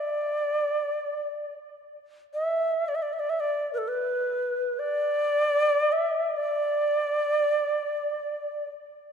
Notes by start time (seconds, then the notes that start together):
Already playing: D5
2.34 E5
2.88 D5
2.95 E5
3.02 D5
3.13 E5
3.20 D5
3.30 E5
3.40 D5
3.73 B4
3.78 A4
3.88 B4
4.79 D5
5.92 E5
6.36 D5